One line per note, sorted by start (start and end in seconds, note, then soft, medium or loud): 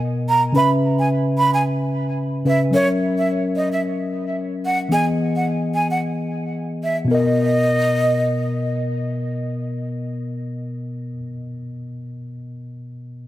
0.00 0.50 B2 medium
0.00 0.50 B3 medium
0.00 0.51 A#4 medium
0.00 0.52 D#5 medium
0.29 0.42 A#5 medium
0.53 2.41 C#3 medium
0.53 2.42 C#4 medium
0.53 2.42 B4 medium
0.53 0.69 B5 loud
0.58 2.43 E5 medium
0.99 1.08 G#5 medium
1.38 1.51 B5 medium
1.54 1.63 G#5 medium
2.45 2.73 C#3 medium
2.45 2.71 C#4 soft
2.45 2.73 B4 soft
2.45 2.74 E5 medium
2.45 2.60 E5 medium
2.71 4.86 F#3 medium
2.71 4.87 C#4 medium
2.71 4.88 A#4 medium
2.71 2.87 C#5 loud
2.76 4.89 E5 medium
3.18 3.27 E5 medium
3.56 3.69 D#5 medium
3.72 3.81 E5 medium
4.66 4.78 F#5 medium
4.89 7.04 E3 medium
4.89 7.05 B3 medium
4.89 7.06 G#4 medium
4.89 5.05 G#5 loud
4.94 7.07 D#5 medium
5.36 5.45 F#5 medium
5.75 5.87 G#5 medium
5.91 6.00 F#5 medium
6.83 6.96 E5 medium
7.05 11.12 B2 medium
7.05 11.15 B3 medium
7.11 11.18 A#4 medium
7.11 8.70 D#5 medium
7.11 11.22 D#5 medium